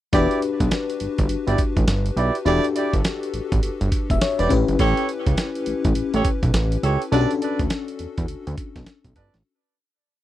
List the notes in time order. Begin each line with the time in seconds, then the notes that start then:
0.13 E1 D4 E4 F#4 G4 B4 D5, kick, closed hi-hat
0.31 closed hi-hat
0.42 closed hi-hat
0.60 B1, kick, closed hi-hat
0.71 snare, closed hi-hat
0.90 closed hi-hat
1.00 G1, closed hi-hat
1.18 G1, kick, closed hi-hat
1.29 G1, closed hi-hat
1.47 G1 E4 G4 D5, closed hi-hat
1.58 kick, closed hi-hat
1.77 A1, kick, closed hi-hat
1.87 G1, snare, closed hi-hat
2.06 closed hi-hat
2.16 B1 E4 G4 D5, closed hi-hat
2.35 closed hi-hat
2.45 E1 D4 E4 F#4 G4 A4 D5, closed hi-hat
2.64 closed hi-hat
2.75 E4 G4 D5, closed hi-hat
2.93 G1, kick, closed hi-hat
3.04 snare, closed hi-hat
3.23 closed hi-hat
3.34 A1, closed hi-hat
3.52 A1, kick, closed hi-hat
3.63 G1, closed hi-hat
3.81 G1, closed hi-hat
3.92 kick, closed hi-hat
4.10 E1 E5, kick, closed hi-hat
4.21 C#5, snare, closed hi-hat
4.39 E1 E4 G4 B4 D5, closed hi-hat
4.49 A1 C#4 E4 G4 B4, kick, closed hi-hat
4.68 G1, closed hi-hat
4.79 A1 G4 A4 C#5, kick, closed hi-hat
4.97 closed hi-hat
5.09 closed hi-hat
5.26 C#2, kick, closed hi-hat
5.37 snare, closed hi-hat
5.55 closed hi-hat
5.66 A1, closed hi-hat
5.85 A1, kick, closed hi-hat
5.95 A1, closed hi-hat
6.14 A1 G4 A4 C#5, closed hi-hat
6.25 kick, closed hi-hat
6.43 B1, kick, closed hi-hat
6.54 A1, snare, closed hi-hat
6.72 closed hi-hat
6.83 C#2 G4 A4 C#5, closed hi-hat
7.02 closed hi-hat
7.12 B1 C#4 D4 F#4 G4 A4 B4 D5, closed hi-hat
7.21 A4
7.31 closed hi-hat
7.41 A4 B4 D5, closed hi-hat
7.59 D2, kick, closed hi-hat
7.70 snare, closed hi-hat
7.88 closed hi-hat
7.99 E2, closed hi-hat
8.18 E2, kick, closed hi-hat
8.28 D2, closed hi-hat
8.47 D2, closed hi-hat
8.58 kick, closed hi-hat
8.76 B1, kick, snare, closed hi-hat
8.86 snare, closed hi-hat
9.04 B1, kick, closed hi-hat
9.16 G1 A4 B4 D5, kick, closed hi-hat
9.34 A1, snare, closed hi-hat